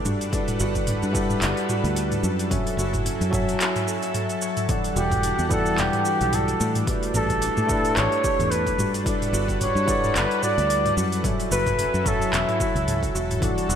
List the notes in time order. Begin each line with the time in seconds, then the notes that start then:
Already playing: D4 G4 A4
0.05 G2 G3 F#4 A4 B4 F#5, mid tom, cabasa
0.21 open hi-hat, cabasa
0.30 G3 D4 E4 F#4 A4 B4, kick, open hi-hat, cabasa
0.35 D5
0.48 mid tom, open hi-hat, cabasa
0.60 G1 F#4, cabasa
0.75 kick, open hi-hat, cabasa
0.87 D4, mid tom, open hi-hat, cabasa
1.03 G2, cabasa
1.12 G3 E4 G4 A4 B4 F#5, kick, cabasa
1.17 D5
1.30 mid tom, cabasa
1.42 G1 D4, clap, open hi-hat, cabasa
1.57 open hi-hat
1.69 F#4, mid tom, cabasa
1.84 D2 G4, open hi-hat, cabasa
1.96 D4, open hi-hat, cabasa
2.12 mid tom, open hi-hat, cabasa
2.23 F#2 F#4, cabasa
2.39 open hi-hat, cabasa
2.48 F#3 C#4 E4 F#4 A4 C#5, kick, mid tom, open hi-hat, cabasa
2.52 E5
2.67 open hi-hat, cabasa
2.77 F#1 F#4, cabasa
2.94 kick, mid tom, open hi-hat, cabasa
3.05 C#4, open hi-hat, cabasa
3.21 F#2, open hi-hat, cabasa
3.30 F#3 F#4 A4 C#5, kick, mid tom, cabasa
3.35 E5
3.49 open hi-hat, cabasa
3.60 C#4, clap, open hi-hat, cabasa
3.76 mid tom, open hi-hat, cabasa
3.88 A4, cabasa
4.03 E5, open hi-hat, cabasa
4.14 C#4, mid tom, open hi-hat, cabasa
4.29 open hi-hat, cabasa
4.42 C#5, cabasa
4.57 mid tom, open hi-hat, cabasa
4.67 E3 G3 D4 E4 A4 D5 F#5, kick, mid tom, open hi-hat, cabasa
4.71 F#5
4.84 open hi-hat, cabasa
4.96 E1 F#4 G4, cabasa
5.12 kick, mid tom, open hi-hat, cabasa
5.23 D4, open hi-hat, cabasa
5.39 E2, cabasa
5.49 E3 G3 E4 G4 A4 D5, kick, mid tom, cabasa
5.54 F#5
5.66 cabasa
5.78 E1 D4 G4, clap, open hi-hat, cabasa
5.93 mid tom, open hi-hat
6.05 F#4, cabasa
6.21 B1 G4, open hi-hat, cabasa
6.33 D4 A4, mid tom, open hi-hat, cabasa
6.48 open hi-hat, cabasa
6.60 A2 F#4, cabasa
6.75 mid tom, open hi-hat, cabasa
6.86 A3 D4 E4 G4 B4, kick, open hi-hat, cabasa
6.90 D5
7.03 open hi-hat, cabasa
7.14 A1 G4 A4, mid tom, cabasa
7.30 kick, open hi-hat, cabasa
7.42 D4, open hi-hat, cabasa
7.57 A2, mid tom, cabasa
7.67 A3 E4 G4 A4 B4, kick, cabasa
7.72 D4
7.85 open hi-hat, cabasa
7.96 A1 D4 C#5, clap, mid tom, open hi-hat, cabasa
8.12 open hi-hat
8.24 G4, kick, cabasa
8.39 E2 A4, mid tom, open hi-hat, cabasa
8.51 D4 B4, open hi-hat, cabasa
8.67 kick, open hi-hat, cabasa
8.78 G2 G3 F#4 A4 B4 F#5, mid tom, cabasa
8.94 open hi-hat, cabasa
9.04 G3 D4 E4 F#4 A4 B4, kick, open hi-hat, cabasa
9.09 D5
9.22 mid tom, open hi-hat, cabasa
9.33 G1 F#4, cabasa
9.49 kick, open hi-hat, cabasa
9.61 D4 C#5, mid tom, open hi-hat, cabasa
9.75 G2, cabasa
9.86 G3 E4 G4 A4 B4 F#5, kick, cabasa
9.90 D5
10.04 mid tom, cabasa
10.15 G1 D4 B4, clap, open hi-hat, cabasa
10.31 open hi-hat
10.43 F#4 D5, mid tom, cabasa
10.58 D2 G4, open hi-hat, cabasa
10.70 D4, open hi-hat, cabasa
10.86 mid tom, open hi-hat, cabasa
10.97 F#2 F#4, cabasa
11.12 open hi-hat, cabasa
11.22 F#3 C#4 E4 F#4 A4 C#5, kick, mid tom, open hi-hat, cabasa
11.27 E5
11.40 open hi-hat, cabasa
11.51 F#1 F#4 B4, cabasa
11.67 kick, mid tom, open hi-hat, cabasa
11.79 C#4, open hi-hat, cabasa
11.94 F#2, cabasa
12.04 F#3 F#4 A4 C#5, kick, mid tom, cabasa
12.08 E5
12.22 open hi-hat, cabasa
12.33 E1 C#4 E4, clap, open hi-hat, cabasa
12.49 mid tom, open hi-hat
12.60 F#4, kick, cabasa
12.75 C#2 A4, open hi-hat, cabasa
12.88 C#4, mid tom, open hi-hat, cabasa
13.03 kick, open hi-hat, cabasa
13.15 E1 F#4, cabasa
13.31 mid tom, open hi-hat, cabasa
13.40 E3 G3 D4 E4 F#4 A4 D5 F#5, kick, mid tom, open hi-hat, cabasa
13.45 F#5
13.58 open hi-hat, cabasa
13.69 E1 F#4, cabasa